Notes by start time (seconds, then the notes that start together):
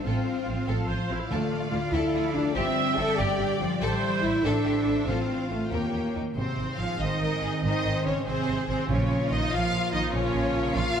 Already playing: C4 C5
0.04 A1 A2 C4 F4 A4 F5
0.27 A3
0.47 A1 F3 C4
0.68 A1 F3 C4 A4
0.89 A1 F4 A4 C5
1.09 A1 C4 E4
1.30 D2 D3 A3 F4 A4 D5
1.52 F3
1.71 D2 D4 E4 F4
1.92 D2 E4 A4
2.14 D2 F4
2.34 D2 D4 E4
2.54 G1 G2 C4 G4 E5 G5
2.76 D3
2.97 G1 G3 C4 A4
3.17 G1 D4 G4 D5
3.39 G1 D4 G4
3.60 G1 F3 C4 D4
3.80 A1 A2 G3 A4 C5 E5
4.03 E3
4.22 A1 A3 E4
4.44 A1 D4 A4 C5
4.65 A1 E4 G4
4.86 A1 C4 E4
5.06 A1 A2 C4 F4 A4 F5
5.30 A3
5.50 A1 A3 C4 F4
5.71 D#2 D#3 A#3 G4 A#4 C#5 G5
5.93 D#2 C#4 G4
6.14 D#2 C#4 D#4 G4
6.36 G#1 G#2 C3 D#3 C4 C5
6.58 G#1 C4
6.79 G#1 F3 F4 G#4 F5
7.00 G#1 D#3 D#4 C5 D#5
7.21 G#1 G#4 A#4
7.42 G#1 C4 G#4
7.63 G#1 G#2 D#3 D#4 C5 D#5
7.85 G#1 D#3
8.05 G#1 C#3 C#4 G#4 C#5
8.26 G#1 C3 C4 G#4 C5
8.47 G#1 G#4
8.68 G#1 C3 C4 C5
8.89 A#1 A#2 C#3 F3 A#3 C#4 F4 C#5
9.10 A#1 A#3
9.31 A#1 D#3 D#4 F4 D#5
9.51 A#1 F3 F4 C#5 F5
9.72 A#1 A#4
9.92 A#1 D#3 D#4 F4 D#5
10.13 A#1 A#2 C#3 C#4 C#5
10.34 A#1 A#3
10.54 A#1 F4
10.75 A#1 F3 F4 C#5 F5
10.96 A#1 A#4